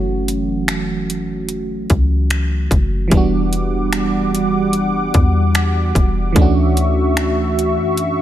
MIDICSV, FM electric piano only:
0, 0, Header, 1, 2, 480
1, 0, Start_track
1, 0, Tempo, 810811
1, 1845, Time_signature, 4, 2, 24, 8
1, 4865, End_track
2, 0, Start_track
2, 0, Title_t, "FM electric piano"
2, 0, Program_c, 0, 5
2, 0, Control_c, 0, 64, 127
2, 0, Note_on_c, 0, 52, 70
2, 0, Note_on_c, 0, 54, 66
2, 0, Note_on_c, 0, 57, 61
2, 0, Note_on_c, 0, 61, 66
2, 0, Note_on_c, 0, 66, 80
2, 1568, Note_off_c, 0, 52, 0
2, 1575, Note_off_c, 0, 54, 0
2, 1582, Note_off_c, 0, 57, 0
2, 1589, Note_off_c, 0, 61, 0
2, 1596, Note_off_c, 0, 66, 0
2, 1821, Note_on_c, 0, 52, 71
2, 1835, Note_on_c, 0, 55, 68
2, 1849, Note_on_c, 0, 59, 62
2, 1853, Control_c, 0, 64, 0
2, 1864, Note_on_c, 0, 62, 64
2, 1877, Note_on_c, 0, 66, 78
2, 1961, Control_c, 0, 64, 127
2, 3729, Note_off_c, 0, 52, 0
2, 3736, Note_off_c, 0, 55, 0
2, 3743, Note_off_c, 0, 59, 0
2, 3744, Note_on_c, 0, 52, 73
2, 3751, Note_off_c, 0, 62, 0
2, 3757, Note_off_c, 0, 66, 0
2, 3757, Note_on_c, 0, 57, 64
2, 3771, Note_on_c, 0, 61, 68
2, 3772, Control_c, 0, 64, 0
2, 3786, Note_on_c, 0, 62, 65
2, 3799, Note_on_c, 0, 66, 78
2, 3879, Control_c, 0, 64, 127
2, 4865, Note_off_c, 0, 52, 0
2, 4865, Note_off_c, 0, 57, 0
2, 4865, Note_off_c, 0, 61, 0
2, 4865, Note_off_c, 0, 62, 0
2, 4865, Note_off_c, 0, 66, 0
2, 4865, End_track
0, 0, End_of_file